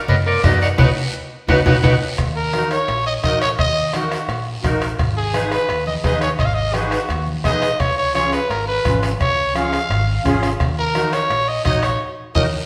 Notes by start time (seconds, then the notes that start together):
0.08 F#2 B4 D#5, cowbell, low conga, long guiro
0.26 A#4 D5
0.43 F#2 D#4 F#4 B4 D5 D#5, bombo low, bombo rim, cowbell, high conga, low timbale, short guiro
0.61 D#5 F#5, short guiro
0.78 B1 D#4 F#4 B4 D#5 F#5, bombo low, low conga, high timbale, long guiro
1.48 B1 D#4 F#4 B4 D#5 F#5, bombo low, low conga, high timbale, long guiro
1.66 B1 D#4 F#4 B4 D#5 F#5, bombo low, low conga, high timbale, long guiro
1.83 B1 D#4 F#4 B4 D#5 F#5, bombo low, low conga, high timbale, long guiro
2.18 D#2, bombo low, bombo rim, high timbale, long guiro
2.36 A#4
2.53 D#4 F#4 A#4, bombo rim, high conga, high timbale, short guiro
2.71 C#5, bombo rim, high timbale, short guiro
2.88 A#1, bombo rim, high timbale, long guiro
3.06 D#5
3.23 A#1 D#4 F#4 A#4 D#5, bombo low, bombo rim, high conga, high timbale, short guiro
3.41 C#5, bombo rim, high timbale, short guiro
3.59 D#2 D#5, bombo low, bombo rim, high timbale, long guiro
3.93 D#4 F#4 A#4, bombo rim, high conga, high timbale, short guiro
4.12 bombo rim, high timbale, short guiro
4.28 A#1, bombo rim, high timbale, long guiro
4.63 A#1 D#4 F#4 A#4, bombo low, bombo rim, high conga, high timbale, short guiro
4.81 bombo rim, high timbale, short guiro
4.99 G#1, bombo low, bombo rim, high timbale, long guiro
5.17 G#4
5.33 D#4 G#4 B4, bombo rim, high conga, high timbale, short guiro
5.51 B4, bombo rim, high timbale, short guiro
5.69 D#2, bombo rim, high timbale, long guiro
5.86 D#5, high conga
6.03 D#2 D#4 G#4 B4 D#5, bombo low, bombo rim, high conga, high timbale, low timbale, short guiro
6.21 C#5, bombo rim, high timbale, short guiro
6.39 G#1 D#5, bombo low, bombo rim, high timbale, long guiro
6.45 F5
6.54 D#5
6.74 D#4 F#4 G#4 B4, bombo rim, high conga, high timbale, short guiro
6.91 bombo rim, high timbale, short guiro
7.09 D#2, bombo rim, high timbale, long guiro
7.27 high conga
7.44 B1 D#4 G#4 B4 D#5, bombo low, bombo rim, high conga, high timbale, low timbale, short guiro
7.62 bombo rim, high timbale, short guiro
7.80 C#2 C#5, bombo low, bombo rim, high timbale, long guiro
7.97 C#5
8.14 C#4 F4 G#4 C#5, bombo rim, high conga, high timbale, short guiro
8.32 B4, bombo rim, high timbale, short guiro
8.50 G#1 A#4, bombo rim, high timbale, long guiro
8.68 B4
8.85 G#1 C#4 F4 B4, bombo low, bombo rim, high conga, high timbale, short guiro
9.03 bombo rim, high timbale, short guiro
9.20 C#2 C#5, bombo low, bombo rim, high timbale, long guiro
9.55 C#4 F4 G#4 F5, bombo rim, high conga, high timbale, short guiro
9.73 bombo rim, high timbale, short guiro
9.89 G#1, bombo rim, high timbale, long guiro
10.25 G#1 C#4 F4 G#4, bombo low, bombo rim, high conga, high timbale, short guiro
10.43 bombo rim, high timbale, short guiro
10.60 D#2, bombo low, bombo rim, high timbale, long guiro
10.79 A#4
10.95 D#4 F#4 A#4, bombo rim, high conga, high timbale, short guiro
11.13 C#5, bombo rim, high timbale, short guiro
11.30 A#1, bombo rim, high timbale, long guiro
11.48 D#5
11.65 A#1 D#4 F#4 C#5 D#5, bombo low, bombo rim, high conga, high timbale, short guiro
11.82 C#5, bombo rim, high timbale, short guiro
12.35 D#2 D#4 F#4 A#4 D#5, bombo low, high conga, high timbale, long guiro